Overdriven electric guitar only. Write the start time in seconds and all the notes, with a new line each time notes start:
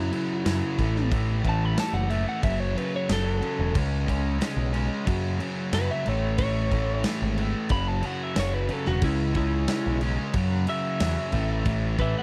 Already playing: F#2 C#3 F#3 C#4
0.12 F#2 C#3 F#3
0.45 F#2 C#3 F#3
0.78 A2 E3 A3
1.10 A2 E3 A3
1.43 A2 E3 A3
1.76 A2 E3 A3
2.09 A2 E3 A3
2.41 F#2 C#3 F#3
2.75 F#2 C#3 F#3
3.08 F#2 C#3 F#3
3.40 F#2 C#3 F#3
3.73 C#3 G#3 C#4
4.06 C#3 G#3 C#4
4.38 C#3 G#3 C#4
4.72 C#3 G#3 C#4
5.06 F#2 C#3 F#3
5.40 F#2 C#3 F#3
5.73 F#2 C#3 F#3
6.06 A2 E3 A3
6.40 A2 E3 A3
6.72 A2 E3 A3
7.04 A2 E3 A3
7.38 A2 E3 A3
7.70 F#2 C#3 F#3
8.02 F#2 C#3 F#3
8.35 F#2 C#3 F#3
8.69 F#2 C#3 F#3
9.03 C#3 G#3 C#4
9.37 C#3 G#3 C#4
9.69 C#3 G#3 C#4
10.02 C#3 G#3 C#4
10.36 F#2 C#3 F#3
10.68 F#2 C#3 F#3
11.01 F#2 C#3 F#3
11.32 A2 E3 A3
11.65 A2 E3 A3
11.98 A2 E3 A3